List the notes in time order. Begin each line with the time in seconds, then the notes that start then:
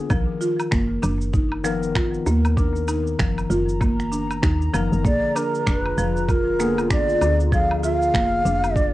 Already playing: D3 B3 G#4
0.08 B1 D#3 F3 A#4, kick, cabasa, low woodblock
0.41 F4, cabasa
0.60 cabasa, low woodblock
0.71 F#1 A#3, finger snap, kick, cabasa
1.02 F#1 D4, cabasa, low woodblock
1.21 cabasa
1.33 D#4, kick, cabasa
1.52 low woodblock
1.64 D#3 F3 B3 A#4, finger snap, cabasa
1.83 cabasa
1.95 F4, finger snap, kick, cabasa, low woodblock
2.14 cabasa
2.26 D#2 A#3, cabasa
2.45 cabasa, low woodblock
2.55 D#3 D4 A#5, kick, cabasa
2.60 A#4
2.76 cabasa
2.88 D#4, cabasa, low woodblock
3.07 cabasa
3.19 F#1 F3, finger snap, kick, cabasa
3.38 cabasa, low woodblock
3.50 F#1 F4, cabasa
3.69 cabasa
3.81 A#3, kick, cabasa, low woodblock
4.00 finger snap, cabasa
4.12 D4, cabasa
4.31 cabasa, low woodblock
4.43 D#2 D#4, finger snap, kick, cabasa
4.62 cabasa
4.73 F#1 D#3 F3 B3 A#4, cabasa, low woodblock
4.92 F#1, cabasa
5.03 A#1 D3 A#3 F4 D5, kick, cabasa
5.07 G#4
5.36 D4 A#4, cabasa, low woodblock
5.55 cabasa
5.67 F1 D4 B4, finger snap, kick, cabasa
5.86 low woodblock
5.97 F1 F3, cabasa
6.17 cabasa
6.28 F4 A#4, kick, cabasa, low woodblock
6.59 D3 A#3 B3 G#4, finger snap, cabasa
6.78 cabasa, low woodblock
6.90 D4 D5, finger snap, kick, cabasa
7.09 cabasa
7.21 D2 D4, cabasa, low woodblock
7.40 cabasa
7.51 D3 F3 F5, kick, cabasa
7.55 G#4
7.71 low woodblock
7.83 F4 F5, cabasa
8.02 cabasa
8.14 F1 A#3, finger snap, kick, cabasa, low woodblock
8.45 F1 D4, cabasa
8.64 cabasa, low woodblock
8.76 D4 D5, kick, cabasa